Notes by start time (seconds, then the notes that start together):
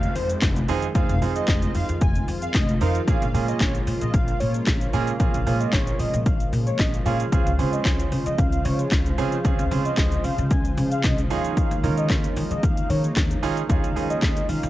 Already playing: D#3 F3 G#3 C4 F4 F5, downlifter
0.03 closed hi-hat, shaker
0.15 F2 C5, open hi-hat, shaker
0.29 closed hi-hat, shaker
0.42 F1, kick, snare, clap, closed hi-hat, shaker
0.56 closed hi-hat, shaker
0.68 F2 C4 D#4 F4 G#4, open hi-hat, shaker
0.82 closed hi-hat, shaker
0.95 F1 C4 D#4 F4 G#4 F5, kick, closed hi-hat, shaker
1.09 F1, closed hi-hat, shaker
1.22 F2 C4 D#4 F4 G#4, open hi-hat, shaker
1.36 D#5, closed hi-hat, shaker
1.48 F1 D#5, kick, snare, clap, closed hi-hat, shaker
1.62 closed hi-hat, shaker
1.75 F2 F5, open hi-hat, shaker
1.89 F2, closed hi-hat, shaker
2.01 F1 G#5, kick, closed hi-hat, shaker
2.15 closed hi-hat, shaker
2.28 F2, open hi-hat, shaker
2.42 F5, closed hi-hat, shaker
2.54 F1 D#5, kick, snare, clap, closed hi-hat, shaker
2.69 closed hi-hat, shaker
2.81 F2 C4 D#4 F4 A#4 F5, open hi-hat, shaker
2.95 closed hi-hat, shaker
3.07 A#1 C#3 G#3 A#3 C#4 F4 G#4 F5, kick, closed hi-hat, shaker
3.22 A#1, closed hi-hat, shaker
3.34 A#2 A#3 C#4 F4 G#4, open hi-hat, shaker
3.48 D#5, closed hi-hat, shaker
3.60 A#1 C#5, kick, snare, clap, closed hi-hat, shaker
3.75 closed hi-hat, shaker
3.87 A#2, open hi-hat, shaker
4.01 A#2 D#5, closed hi-hat, shaker
4.14 A#1 F5, kick, closed hi-hat, shaker
4.28 closed hi-hat, shaker
4.40 A#2 C#5, open hi-hat, shaker
4.54 closed hi-hat, shaker
4.67 A#1, kick, snare, clap, closed hi-hat, shaker
4.81 closed hi-hat, shaker
4.93 A#2 A#3 C#4 F4 G#4, open hi-hat, shaker
5.07 closed hi-hat, shaker
5.20 A#1 A#3 C#4 F4 G#4 F5, kick, closed hi-hat, shaker
5.34 A#1, closed hi-hat, shaker
5.46 A#2 A#3 C#4 F4 G#4, open hi-hat, shaker
5.60 D#5, closed hi-hat, shaker
5.73 A#1 C#5, kick, snare, clap, closed hi-hat, shaker
5.87 closed hi-hat, shaker
5.99 A#2 D#5, open hi-hat, shaker
6.14 A#2, closed hi-hat, shaker
6.26 A#1 F5, kick, closed hi-hat, shaker
6.40 closed hi-hat, shaker
6.53 A#2, open hi-hat, shaker
6.67 C#5, closed hi-hat, shaker
6.79 A#1 D#5, kick, snare, clap, closed hi-hat, shaker
6.94 closed hi-hat, shaker
7.05 A#2 A#3 C#4 F4 G#4 F5, open hi-hat, shaker
7.20 closed hi-hat, shaker
7.32 C#2 C4 C#4 F4 G#4 C5 F5, kick, closed hi-hat, shaker
7.46 C#2, closed hi-hat, shaker
7.59 C#3 C4 C#4 F4 G#4, open hi-hat, shaker
7.72 D#5, closed hi-hat, shaker
7.85 C#2 C#5, kick, snare, clap, closed hi-hat, shaker
7.99 closed hi-hat, shaker
8.12 C#3, open hi-hat, shaker
8.26 C#3 D#5, closed hi-hat, shaker
8.38 C#2 F5, kick, closed hi-hat, shaker
8.52 closed hi-hat, shaker
8.65 C#3 C#5, open hi-hat, shaker
8.79 closed hi-hat, shaker
8.92 C#2, kick, snare, clap, closed hi-hat, shaker
9.06 closed hi-hat, shaker
9.18 C#3 C4 C#4 F4 G#4, open hi-hat, shaker
9.32 closed hi-hat, shaker
9.44 C#2 C4 C#4 F4 G#4 F5, kick, closed hi-hat, shaker
9.59 C#2, closed hi-hat, shaker
9.71 C#3 C4 C#4 F4 G#4, open hi-hat, shaker
9.85 D#5, closed hi-hat, shaker
9.97 C#2 D#5, kick, snare, clap, closed hi-hat, shaker
10.12 closed hi-hat, shaker
10.24 C#3 F5, open hi-hat, shaker
10.38 C#3, closed hi-hat, shaker
10.51 C#2 G#5, kick, closed hi-hat, shaker
10.65 closed hi-hat, shaker
10.77 C#3, open hi-hat, shaker
10.92 F5, closed hi-hat, shaker
11.04 C#2 D#5, kick, snare, clap, closed hi-hat, shaker
11.18 closed hi-hat, shaker
11.30 D#2 C#3 A#3 C#4 D#4 F4 G#4 F5, open hi-hat, shaker
11.44 closed hi-hat, shaker
11.57 F5, kick, closed hi-hat, shaker
11.71 D#2, closed hi-hat, shaker
11.83 D#3 C#4 D#4 F4 A#4, open hi-hat, shaker
11.98 D#5, closed hi-hat, shaker
12.10 D#2 C#5, kick, snare, clap, closed hi-hat, shaker
12.24 closed hi-hat, shaker
12.37 D#3, open hi-hat, shaker
12.51 D#3 D#5, closed hi-hat, shaker
12.63 D#2 F5, kick, closed hi-hat, shaker
12.77 closed hi-hat, shaker
12.90 D#3 C#5, open hi-hat, shaker
13.04 closed hi-hat, shaker
13.16 D#2, kick, snare, clap, closed hi-hat, shaker
13.31 closed hi-hat, shaker
13.42 D#3 C#4 D#4 F4 G#4, open hi-hat, shaker
13.57 closed hi-hat, shaker
13.69 D#2 C#4 D#4 F4 G#4 F5, kick, closed hi-hat, shaker
13.84 D#2, closed hi-hat, shaker
13.96 D#3 C#4 D#4 F4 G#4, open hi-hat, shaker
14.10 D#5, closed hi-hat, shaker
14.22 D#2, kick, snare, clap, closed hi-hat, shaker
14.37 closed hi-hat, shaker
14.49 D#3 F5, open hi-hat, shaker
14.63 D#3, closed hi-hat, shaker